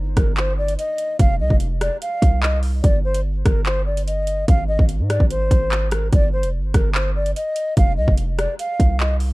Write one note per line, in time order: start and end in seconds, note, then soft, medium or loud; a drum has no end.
0.00 0.16 G1 loud
0.00 2.05 D#4 medium
0.17 0.76 G1 loud
0.17 0.33 A#4 medium
0.17 kick loud
0.17 cross-stick medium
0.17 closed hi-hat medium
0.37 0.53 C5 medium
0.37 clap loud
0.58 0.74 D5 medium
0.68 closed hi-hat medium
0.78 1.17 D#5 medium
0.78 closed hi-hat medium
0.98 closed hi-hat medium
1.19 1.41 F1 loud
1.19 1.35 F5 loud
1.19 kick loud
1.19 closed hi-hat medium
1.40 1.50 C2 loud
1.40 1.56 D#5 medium
1.50 1.90 F1 loud
1.50 kick medium
1.60 closed hi-hat medium
1.81 1.97 D5 medium
1.81 cross-stick loud
1.81 closed hi-hat medium
2.02 2.40 F5 medium
2.02 closed hi-hat medium
2.22 2.81 C2 loud
2.22 kick medium
2.22 closed hi-hat medium
2.43 2.58 D#5 medium
2.43 clap loud
2.63 open hi-hat medium
2.83 3.43 G1 loud
2.83 2.99 D5 loud
2.83 kick loud
2.83 closed hi-hat medium
3.05 3.20 C5 medium
3.14 closed hi-hat medium
3.46 4.44 G1 loud
3.46 3.61 A#4 medium
3.46 kick loud
3.46 cross-stick medium
3.46 closed hi-hat medium
3.66 3.82 C5 medium
3.66 clap loud
3.86 4.02 D5 medium
3.97 closed hi-hat medium
4.07 4.46 D#5 medium
4.07 closed hi-hat medium
4.27 closed hi-hat medium
4.48 4.78 G#1 loud
4.48 4.64 F5 loud
4.48 kick loud
4.48 closed hi-hat medium
4.68 4.84 D#5 medium
4.79 5.01 G#1 loud
4.79 kick medium
4.89 closed hi-hat medium
5.00 5.19 G#2 loud
5.09 5.25 D5 medium
5.09 cross-stick loud
5.09 closed hi-hat medium
5.20 5.50 G#1 loud
5.20 kick medium
5.31 5.88 C5 loud
5.31 closed hi-hat medium
5.51 6.10 G#1 loud
5.51 kick medium
5.51 closed hi-hat medium
5.72 clap loud
5.91 6.08 A#4 medium
5.91 cross-stick loud
5.91 closed hi-hat medium
6.13 6.45 G1 loud
6.13 6.29 D5 loud
6.13 kick loud
6.13 closed hi-hat medium
6.33 6.49 C5 medium
6.43 6.60 F1 loud
6.43 closed hi-hat medium
6.59 6.73 G1 loud
6.74 7.33 G1 loud
6.74 6.90 A#4 medium
6.74 kick medium
6.74 cross-stick loud
6.74 closed hi-hat medium
6.95 7.11 C5 medium
6.95 clap loud
7.16 7.31 D5 medium
7.26 closed hi-hat medium
7.36 7.75 D#5 medium
7.36 closed hi-hat medium
7.56 closed hi-hat medium
7.77 7.99 F1 loud
7.77 7.93 F5 loud
7.77 kick loud
7.77 closed hi-hat medium
7.98 8.07 C2 loud
7.98 8.13 D#5 medium
8.08 8.47 F1 loud
8.08 kick medium
8.18 closed hi-hat medium
8.39 8.55 D5 loud
8.39 cross-stick loud
8.39 closed hi-hat medium
8.59 8.98 F5 medium
8.59 closed hi-hat medium
8.80 9.33 C2 loud
8.80 kick medium
8.80 closed hi-hat medium
9.00 9.16 D#5 medium
9.00 clap loud
9.20 open hi-hat medium